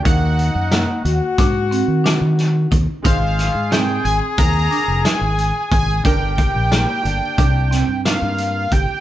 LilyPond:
<<
  \new Staff \with { instrumentName = "Analog synth lead" } { \time 9/8 \key g \phrygian \tempo 4. = 60 ges''2 r2 r8 | f''4 g''8 aes''8 bes''4 aes''4 aes''8 | g''2. f''4 g''8 | }
  \new Staff \with { instrumentName = "Trombone" } { \time 9/8 \key g \phrygian ees'4. ges'2~ ges'8 r8 | aes'1~ aes'8 | g'4. d'4 r8 bes4 r8 | }
  \new Staff \with { instrumentName = "Grand piano" } { \time 9/8 \key g \phrygian <ees bes ges'>1~ <ees bes ges'>8 | <aes ees' c''>1~ <aes ees' c''>8 | <g d' bes'>1~ <g d' bes'>8 | }
  \new Staff \with { instrumentName = "Marimba" } { \time 9/8 \key g \phrygian ees'4 bes4 d'8 c'8 d'4 ees'8 | ees'4 c'4 ees'8 d'8 ees'4 aes'8 | d'4 bes4 d'8 c'8 d'4 g'8 | }
  \new Staff \with { instrumentName = "Fingered electric bass" } { \clef bass \time 9/8 \key g \phrygian ees,8. ges,8 r16 ees,16 r16 aes,8. ees8 ees8. ees,16 r16 | aes,,8. aes,8. aes,,16 r16 ees,8 r16 f,,16 r16 aes,,8 r16 aes,,8 | g,,8. bes,,8 r16 g,,16 r16 c,8. g,8 g,8. g,,16 r16 | }
  \new DrumStaff \with { instrumentName = "Drums" } \drummode { \time 9/8 <hh bd>8 hh8 <hh sn>8 hh8 <hh bd sn>8 hh8 <hh sn>8 <hh sn>8 <hh bd>8 | <hh bd>8 <hh sn>8 <hh sn>8 hh8 <hh bd>8 hh8 <hh sn>8 hh8 <hh bd>8 | <hh bd>8 <hh bd>8 <hh sn>8 hh8 <hh bd>8 <hh sn>8 <hh sn>8 hh8 <hh bd>8 | }
>>